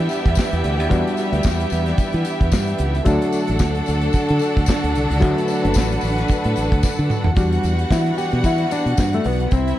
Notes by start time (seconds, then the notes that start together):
Already playing: E3 G3 B3 D4 E4 F#4 G4 E5
0.09 closed hi-hat, tambourine
0.26 E2, kick, closed hi-hat
0.35 kick, snare, tambourine
0.39 clap
0.53 E2, closed hi-hat
0.64 D2, closed hi-hat
0.80 D#2, closed hi-hat
0.89 E2 G3 B3 D4 F#4, kick, closed hi-hat
1.07 closed hi-hat
1.17 closed hi-hat, tambourine
1.32 D2, closed hi-hat
1.43 E2, kick, snare, clap, tambourine
1.60 closed hi-hat
1.70 E2, closed hi-hat, tambourine
1.86 snare, closed hi-hat
1.98 muted fingered electric bass stroke, kick, closed hi-hat, tambourine
2.13 E3, closed hi-hat
2.25 closed hi-hat, tambourine
2.41 E2, kick, closed hi-hat
2.52 G2, kick, snare, clap, tambourine
2.67 closed hi-hat
2.78 C#2, closed hi-hat
2.94 closed hi-hat
3.05 D2 D3 F#3 A3 D4 F#4 A4 F#5, kick, closed hi-hat, tambourine
3.22 closed hi-hat
3.33 closed hi-hat, tambourine
3.47 A1, closed hi-hat
3.59 D2, kick, snare, clap, tambourine
3.75 closed hi-hat
3.86 D2, closed hi-hat, tambourine
4.01 closed hi-hat
4.13 muted fingered electric bass stroke, kick, closed hi-hat, tambourine
4.29 D3, closed hi-hat
4.39 closed hi-hat, tambourine
4.57 D2, kick, closed hi-hat
4.66 kick, snare, clap, tambourine
4.84 D2, closed hi-hat
4.95 C2, closed hi-hat
5.11 C#2, closed hi-hat
5.20 D2 F#3 A3 D4 F#4 B4, kick, closed hi-hat, tambourine
5.38 closed hi-hat
5.48 closed hi-hat, tambourine
5.65 F#1, closed hi-hat
5.74 A1, kick, snare, clap, tambourine
5.92 closed hi-hat
6.01 A1, open hi-hat, tambourine
6.18 snare, closed hi-hat
6.28 kick, closed hi-hat, tambourine
6.44 A2, closed hi-hat
6.56 A1, closed hi-hat, tambourine
6.72 D2, kick, closed hi-hat
6.83 kick, snare, tambourine
6.99 D3
7.10 mid tom, tambourine
7.24 D#2, floor tom
7.34 E2 E3 G3 B3 D4 F#4 F#5, kick, closed hi-hat, tambourine
7.52 closed hi-hat
7.63 E2, closed hi-hat, tambourine
7.79 closed hi-hat
7.91 E3 E4, kick, snare, clap, tambourine
8.06 closed hi-hat
8.18 G4, closed hi-hat, tambourine
8.31 B2, closed hi-hat
8.44 E3 E4, kick, closed hi-hat, tambourine
8.58 closed hi-hat
8.71 D4, closed hi-hat, tambourine
8.86 B2, closed hi-hat
8.97 G2, kick, snare, clap, tambourine
9.13 A3, closed hi-hat
9.24 B1 B3, open hi-hat
9.40 closed hi-hat
9.51 C2 C3 G3 C4 E4 B4 E5, kick, closed hi-hat, tambourine
9.68 closed hi-hat